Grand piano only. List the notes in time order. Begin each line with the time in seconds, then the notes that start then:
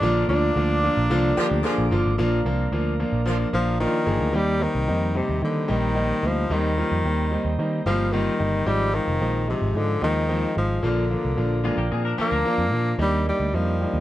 0.02 D3 F3 A#3 D4 F4
0.29 D3 F3 A#3 D4 F4
0.56 D3 F3 A#3 D4 F4
0.83 D3 F3 A#3 D4 F4
1.10 D3 F3 A#3 D4 F4
1.37 D3 F3 A#3 D4 G4
1.64 D3 F3 A#3 D4 G#4
1.91 D3 F3 A#3 D4 F4
2.18 F3 A#3 D4 F4
2.45 F3 A#3 D4 F4
2.72 F3 A#3 D4 F4
2.99 F3 A#3 D4 F4
3.26 F3 A#3 D4 F4
3.53 F3 A#3 D4 F4
3.80 F3 A#3 D4 F4
4.05 F3 A#3 D4 G#4
4.32 G3 A#3 C4 D#4
4.60 G3 A#3 C4 D#4
4.88 G3 A#3 C4 D#4
5.15 G3 A#3 C4 D#4
5.42 G3 A#3 C4 D#4
5.68 G3 A#3 C4 D#4
5.95 G3 A#3 C4 D#4
6.23 G3 A#3 C4 D#4
6.50 G3 A#3 C4 D#4
6.78 G3 A#3 C4 F4
7.05 G3 A#3 C4 D#4
7.31 G3 A#3 C4 D#4
7.59 G3 A#3 C4 D#4
7.86 G3 A#3 C4 F4
8.12 G3 A#3 C4 F4
8.39 G3 A#3 C4 D#4
8.66 F3 G#3 C4 D#4
8.94 F3 G#3 C4 D#4
9.21 F3 G#3 C4 D#4
9.48 F3 G#3 C4 D#4
9.76 F3 G#3 C4 D#4
10.02 F3 G#3 C4 D#4
10.29 F3 G#3 C4 D#4
10.55 F3 G#3 C4 D#4
10.83 F3 A#3 D4 F4
11.10 F3 A#3 D4 F4
11.37 F3 A#3 D4 F4
11.64 F3 A#3 D4 F4
11.91 F3 A#3 D4 F4
12.18 F3 A#3 D4 F4
12.45 F3 A#3 D4 F4
12.72 F3 A#3 D4 F4
12.99 G3 A#3 D4 D#4
13.26 G3 A#3 D4 D#4
13.54 G3 A#3 D4 D#4
13.81 G3 A#3 D4 D#4